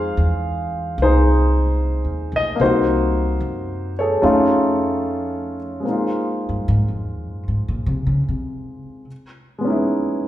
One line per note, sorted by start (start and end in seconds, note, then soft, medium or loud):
0.00 0.14 F2 medium
0.00 2.57 G#3 soft
0.00 2.60 C4 soft
0.00 1.02 D#4 soft
0.00 2.63 F4 soft
0.00 0.96 G#4 medium
0.00 0.96 C5 medium
0.00 0.96 F5 medium
0.17 0.94 E2 medium
0.98 2.02 C2 medium
1.02 2.58 D#4 medium
1.02 2.59 G#4 soft
1.02 2.32 C5 medium
2.04 2.30 D#2 soft
2.32 2.58 B1 medium
2.36 2.62 D#5 medium
2.56 3.37 C2 medium
2.56 4.22 C3 soft
2.56 4.20 A#3 soft
2.61 4.19 D#4 soft
2.61 2.65 F#4 medium
2.61 3.93 C5 medium
2.67 4.25 F#4 medium
3.40 4.18 F#2 medium
3.99 5.57 G#4 soft
3.99 5.56 A4 soft
3.99 5.56 C#5 medium
4.22 5.81 F2 medium
4.22 5.84 A3 medium
4.22 5.84 C#4 medium
4.22 5.85 D#4 soft
4.22 5.85 F4 medium
5.80 9.05 G#3 soft
5.80 9.06 C4 soft
5.85 9.07 A#3 soft
5.85 9.09 D#4 soft
5.91 9.10 F4 soft
6.49 6.63 G2 medium
6.68 6.88 G#2 medium
6.88 7.08 F2 soft
7.08 7.28 D#2 soft
7.28 7.42 F#2 medium
7.48 7.68 G#2 medium
7.68 7.86 A#2 medium
7.86 8.06 C3 medium
8.07 8.22 C#3 medium
8.29 9.04 C3 medium
9.59 10.28 G#3 soft
9.59 10.28 B3 soft
9.65 10.28 C#4 soft
9.65 10.28 D#4 soft
9.70 10.28 E4 soft